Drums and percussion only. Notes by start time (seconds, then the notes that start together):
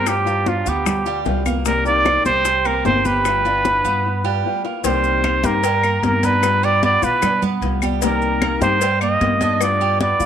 0.06 high bongo, high conga, claves, maracas
0.27 high bongo, high conga, maracas
0.46 high bongo, high conga, maracas
0.66 high bongo, maracas
0.86 high bongo, high conga, low conga, claves, maracas
1.06 high conga, maracas
1.25 high bongo, low bongo, high conga, maracas
1.46 high bongo, high conga, claves, maracas
1.65 high bongo, high conga, maracas
1.86 high bongo, high conga, maracas
2.05 high bongo, high conga, claves, maracas
2.25 high bongo, high conga, maracas
2.45 high bongo, high conga, maracas
2.65 high conga, claves, maracas
2.85 high bongo, low bongo, high conga, maracas
3.05 high bongo, high conga, maracas
3.25 high bongo, high conga, claves, maracas
3.45 high bongo, high conga, maracas
3.65 high bongo, high conga, maracas
3.85 high bongo, maracas
4.84 cowbell, high conga, maracas
5.04 high conga, maracas
5.24 cowbell, high conga, claves, maracas
5.44 cowbell, high conga, maracas
5.64 cowbell, high conga, maracas
5.83 high conga, claves, maracas
6.03 cowbell, high conga, maracas
6.23 cowbell, high conga, maracas
6.43 cowbell, high conga, claves, maracas
6.63 high conga, maracas
6.83 cowbell, high conga, maracas
7.03 maracas
7.22 cowbell, high conga, low conga, claves, maracas
7.42 high conga, low conga, maracas
7.62 cowbell, high conga, maracas
7.82 high conga, claves, maracas
8.02 cowbell, high conga, maracas
8.22 high conga, maracas
8.42 cowbell, high conga, claves, maracas
8.61 cowbell, high conga, maracas
8.81 cowbell, high conga, maracas
9.01 high conga, claves, maracas
9.21 cowbell, high conga, maracas
9.41 cowbell, high conga, maracas
9.61 cowbell, high conga, claves, maracas
9.80 high conga, maracas
10.01 cowbell, high conga, maracas
10.20 maracas